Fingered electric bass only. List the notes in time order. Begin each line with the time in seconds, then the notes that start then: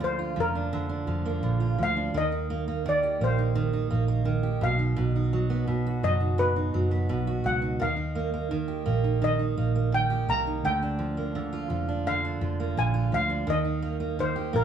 Already playing: D2
0.37 F1
1.08 F1
1.43 A#1
1.79 D2
2.14 D#2
3.21 A#1
3.92 A#1
4.62 B1
4.98 B1
6.03 F#1
6.74 F#1
7.10 B1
7.45 C#2
7.81 D#2
8.87 A#1
9.58 A#1
10.29 C2
10.63 D2
11.70 F1
12.41 F1
12.77 A#1
13.12 D2
13.48 D#2
14.54 A#1